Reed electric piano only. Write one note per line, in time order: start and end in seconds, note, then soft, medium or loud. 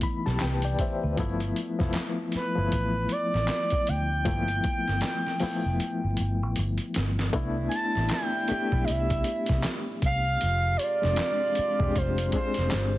0.00 1.20 E3 medium
0.00 1.18 A3 medium
0.00 1.19 B3 medium
0.00 1.20 D#4 medium
0.00 1.20 E4 loud
0.00 0.24 B5 medium
0.26 0.41 G4 medium
0.26 0.40 A5 medium
0.42 0.63 B4 medium
0.42 0.63 G5 medium
0.65 0.79 D5 medium
0.65 0.79 G5 medium
0.81 1.02 C5 medium
0.81 1.16 E5 medium
1.03 1.39 B4 medium
1.17 1.73 F3 loud
1.17 1.74 A3 loud
1.17 1.74 B3 medium
1.17 1.75 E4 loud
1.79 2.49 F3 medium
1.79 2.49 A3 medium
1.79 2.50 B3 medium
1.79 2.50 E4 medium
2.56 3.95 F3 medium
2.56 3.96 A3 medium
2.56 3.96 B3 medium
2.56 3.97 E4 medium
4.25 5.33 F3 medium
4.25 5.34 A3 medium
4.25 4.34 A#3 medium
4.25 5.35 E4 medium
4.33 5.38 B3 medium
5.40 6.85 F3 medium
5.40 6.85 A3 medium
5.40 6.86 B3 medium
5.40 6.86 E4 medium
7.33 8.41 A3 loud
7.33 8.41 B3 loud
7.33 8.42 D4 loud
7.33 8.42 E4 loud
8.48 9.93 A3 medium
8.48 9.93 B3 medium
8.48 9.94 D4 medium
8.48 9.94 G4 medium
11.02 11.72 G#3 medium
11.02 11.72 C4 medium
11.02 11.73 D4 medium
11.02 11.73 F4 medium
11.79 12.29 G#3 medium
11.79 12.30 C4 medium
11.79 12.30 D4 medium
11.79 12.31 G4 medium
12.33 12.98 G#3 medium
12.33 12.98 C4 medium
12.33 12.98 D4 medium
12.33 12.98 G#4 medium